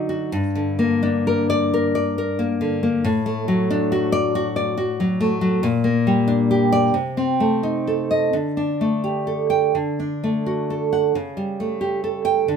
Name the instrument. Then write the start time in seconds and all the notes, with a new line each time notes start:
nylon-string guitar
Already playing: D3 F#3 D#4 D5
0.09 F#4
0.32 G2
0.55 D3
0.79 A#3
1.03 D4
1.27 A#4
1.50 D5
1.74 A#4
1.95 D5
2.18 A#4
2.39 A#3
2.61 D3
2.83 A#3
3.04 A2
3.26 A3
3.48 F#3
3.71 D4
3.92 F#4
4.12 D5
4.35 F#4
4.56 D5
4.77 F#4
5.00 F#3
5.20 A3
5.41 F#3
5.63 A#2
5.84 A#3
6.07 G3
6.28 D4
6.51 G4
6.72 D5
6.94 C3
7.17 C4
7.40 A3
7.63 D#4
7.87 A4
8.11 D#5
8.33 D3
8.57 D4
8.81 A3
9.04 G4
9.27 A4
9.50 G5
9.75 D3
10.00 D4
10.24 A3
10.46 F#4
10.70 A4
10.93 F#5
11.15 C#3
11.37 G3
11.60 A3
11.81 G4
12.04 A4
12.25 G5
12.48 D3